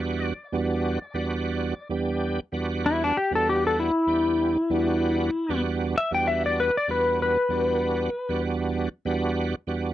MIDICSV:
0, 0, Header, 1, 3, 480
1, 0, Start_track
1, 0, Key_signature, 1, "minor"
1, 0, Tempo, 621118
1, 37, Time_signature, 4, 2, 24, 8
1, 7678, End_track
2, 0, Start_track
2, 0, Title_t, "Electric slide guitar"
2, 0, Program_c, 0, 29
2, 0, Note_on_c, 0, 76, 95
2, 196, Note_off_c, 0, 76, 0
2, 196, Note_on_c, 0, 74, 95
2, 1448, Note_off_c, 0, 74, 0
2, 2210, Note_on_c, 0, 64, 71
2, 2333, Note_off_c, 0, 64, 0
2, 2349, Note_on_c, 0, 62, 77
2, 2443, Note_off_c, 0, 62, 0
2, 2452, Note_on_c, 0, 67, 76
2, 2575, Note_off_c, 0, 67, 0
2, 2592, Note_on_c, 0, 69, 77
2, 2684, Note_off_c, 0, 69, 0
2, 2700, Note_on_c, 0, 67, 72
2, 2819, Note_off_c, 0, 67, 0
2, 2834, Note_on_c, 0, 69, 75
2, 2926, Note_off_c, 0, 69, 0
2, 2934, Note_on_c, 0, 64, 84
2, 4336, Note_off_c, 0, 64, 0
2, 4618, Note_on_c, 0, 76, 79
2, 4739, Note_off_c, 0, 76, 0
2, 4749, Note_on_c, 0, 79, 71
2, 4844, Note_off_c, 0, 79, 0
2, 4849, Note_on_c, 0, 76, 89
2, 4974, Note_off_c, 0, 76, 0
2, 4991, Note_on_c, 0, 74, 73
2, 5085, Note_off_c, 0, 74, 0
2, 5099, Note_on_c, 0, 71, 76
2, 5219, Note_off_c, 0, 71, 0
2, 5235, Note_on_c, 0, 74, 77
2, 5327, Note_off_c, 0, 74, 0
2, 5339, Note_on_c, 0, 71, 87
2, 5562, Note_off_c, 0, 71, 0
2, 5582, Note_on_c, 0, 71, 87
2, 6502, Note_off_c, 0, 71, 0
2, 7678, End_track
3, 0, Start_track
3, 0, Title_t, "Tonewheel organ"
3, 0, Program_c, 1, 16
3, 0, Note_on_c, 1, 40, 80
3, 0, Note_on_c, 1, 55, 73
3, 0, Note_on_c, 1, 59, 71
3, 0, Note_on_c, 1, 62, 76
3, 0, Note_on_c, 1, 66, 88
3, 254, Note_off_c, 1, 40, 0
3, 256, Note_off_c, 1, 55, 0
3, 257, Note_off_c, 1, 59, 0
3, 258, Note_off_c, 1, 62, 0
3, 261, Note_off_c, 1, 66, 0
3, 404, Note_on_c, 1, 40, 92
3, 407, Note_on_c, 1, 55, 78
3, 411, Note_on_c, 1, 59, 86
3, 412, Note_on_c, 1, 62, 77
3, 419, Note_on_c, 1, 66, 103
3, 761, Note_off_c, 1, 40, 0
3, 763, Note_off_c, 1, 55, 0
3, 764, Note_off_c, 1, 59, 0
3, 765, Note_off_c, 1, 62, 0
3, 768, Note_off_c, 1, 66, 0
3, 881, Note_on_c, 1, 40, 77
3, 885, Note_on_c, 1, 55, 65
3, 887, Note_on_c, 1, 59, 74
3, 891, Note_on_c, 1, 62, 69
3, 896, Note_on_c, 1, 66, 88
3, 1342, Note_off_c, 1, 40, 0
3, 1344, Note_off_c, 1, 55, 0
3, 1345, Note_off_c, 1, 59, 0
3, 1347, Note_off_c, 1, 62, 0
3, 1350, Note_off_c, 1, 66, 0
3, 1464, Note_on_c, 1, 40, 78
3, 1468, Note_on_c, 1, 55, 76
3, 1474, Note_on_c, 1, 62, 73
3, 1475, Note_on_c, 1, 59, 80
3, 1480, Note_on_c, 1, 67, 83
3, 1851, Note_off_c, 1, 40, 0
3, 1852, Note_off_c, 1, 55, 0
3, 1856, Note_off_c, 1, 59, 0
3, 1856, Note_off_c, 1, 62, 0
3, 1858, Note_off_c, 1, 67, 0
3, 1947, Note_on_c, 1, 40, 83
3, 1951, Note_on_c, 1, 55, 78
3, 1955, Note_on_c, 1, 59, 73
3, 1962, Note_on_c, 1, 62, 68
3, 1964, Note_on_c, 1, 66, 87
3, 2414, Note_off_c, 1, 40, 0
3, 2415, Note_off_c, 1, 55, 0
3, 2417, Note_off_c, 1, 59, 0
3, 2421, Note_off_c, 1, 62, 0
3, 2422, Note_off_c, 1, 66, 0
3, 2556, Note_on_c, 1, 40, 74
3, 2558, Note_on_c, 1, 55, 60
3, 2564, Note_on_c, 1, 59, 66
3, 2568, Note_on_c, 1, 62, 64
3, 2572, Note_on_c, 1, 66, 79
3, 3020, Note_off_c, 1, 40, 0
3, 3021, Note_off_c, 1, 55, 0
3, 3024, Note_off_c, 1, 59, 0
3, 3026, Note_off_c, 1, 62, 0
3, 3028, Note_off_c, 1, 66, 0
3, 3143, Note_on_c, 1, 40, 68
3, 3149, Note_on_c, 1, 59, 69
3, 3150, Note_on_c, 1, 55, 55
3, 3153, Note_on_c, 1, 62, 62
3, 3158, Note_on_c, 1, 67, 71
3, 3531, Note_off_c, 1, 40, 0
3, 3534, Note_off_c, 1, 55, 0
3, 3534, Note_off_c, 1, 59, 0
3, 3536, Note_off_c, 1, 62, 0
3, 3538, Note_off_c, 1, 67, 0
3, 3632, Note_on_c, 1, 40, 77
3, 3633, Note_on_c, 1, 55, 80
3, 3636, Note_on_c, 1, 59, 76
3, 3639, Note_on_c, 1, 62, 80
3, 3642, Note_on_c, 1, 66, 102
3, 4096, Note_off_c, 1, 40, 0
3, 4097, Note_off_c, 1, 55, 0
3, 4099, Note_off_c, 1, 59, 0
3, 4100, Note_off_c, 1, 62, 0
3, 4101, Note_off_c, 1, 66, 0
3, 4242, Note_on_c, 1, 40, 89
3, 4247, Note_on_c, 1, 55, 80
3, 4250, Note_on_c, 1, 59, 86
3, 4252, Note_on_c, 1, 62, 75
3, 4258, Note_on_c, 1, 66, 99
3, 4601, Note_off_c, 1, 40, 0
3, 4604, Note_off_c, 1, 55, 0
3, 4605, Note_off_c, 1, 59, 0
3, 4606, Note_off_c, 1, 62, 0
3, 4609, Note_off_c, 1, 66, 0
3, 4722, Note_on_c, 1, 40, 72
3, 4724, Note_on_c, 1, 55, 55
3, 4730, Note_on_c, 1, 59, 58
3, 4734, Note_on_c, 1, 62, 58
3, 4735, Note_on_c, 1, 66, 73
3, 5184, Note_off_c, 1, 40, 0
3, 5185, Note_off_c, 1, 55, 0
3, 5188, Note_off_c, 1, 59, 0
3, 5190, Note_off_c, 1, 62, 0
3, 5191, Note_off_c, 1, 66, 0
3, 5315, Note_on_c, 1, 40, 73
3, 5316, Note_on_c, 1, 55, 66
3, 5319, Note_on_c, 1, 59, 64
3, 5322, Note_on_c, 1, 62, 59
3, 5328, Note_on_c, 1, 66, 76
3, 5697, Note_off_c, 1, 40, 0
3, 5698, Note_off_c, 1, 55, 0
3, 5700, Note_off_c, 1, 59, 0
3, 5701, Note_off_c, 1, 62, 0
3, 5704, Note_off_c, 1, 66, 0
3, 5786, Note_on_c, 1, 40, 66
3, 5794, Note_on_c, 1, 55, 71
3, 5797, Note_on_c, 1, 59, 65
3, 5800, Note_on_c, 1, 62, 64
3, 5803, Note_on_c, 1, 66, 78
3, 6254, Note_off_c, 1, 40, 0
3, 6258, Note_off_c, 1, 55, 0
3, 6260, Note_off_c, 1, 59, 0
3, 6261, Note_off_c, 1, 62, 0
3, 6263, Note_off_c, 1, 66, 0
3, 6406, Note_on_c, 1, 40, 77
3, 6407, Note_on_c, 1, 55, 81
3, 6411, Note_on_c, 1, 59, 68
3, 6417, Note_on_c, 1, 62, 73
3, 6418, Note_on_c, 1, 66, 98
3, 6866, Note_off_c, 1, 40, 0
3, 6867, Note_off_c, 1, 55, 0
3, 6869, Note_off_c, 1, 59, 0
3, 6872, Note_off_c, 1, 62, 0
3, 6872, Note_off_c, 1, 66, 0
3, 6995, Note_on_c, 1, 40, 86
3, 6999, Note_on_c, 1, 55, 73
3, 7000, Note_on_c, 1, 59, 72
3, 7005, Note_on_c, 1, 62, 75
3, 7010, Note_on_c, 1, 66, 98
3, 7378, Note_off_c, 1, 40, 0
3, 7380, Note_off_c, 1, 55, 0
3, 7380, Note_off_c, 1, 59, 0
3, 7383, Note_off_c, 1, 62, 0
3, 7385, Note_off_c, 1, 66, 0
3, 7472, Note_on_c, 1, 40, 78
3, 7475, Note_on_c, 1, 55, 78
3, 7479, Note_on_c, 1, 59, 77
3, 7484, Note_on_c, 1, 62, 74
3, 7484, Note_on_c, 1, 66, 87
3, 7678, Note_off_c, 1, 40, 0
3, 7678, Note_off_c, 1, 55, 0
3, 7678, Note_off_c, 1, 59, 0
3, 7678, Note_off_c, 1, 62, 0
3, 7678, Note_off_c, 1, 66, 0
3, 7678, End_track
0, 0, End_of_file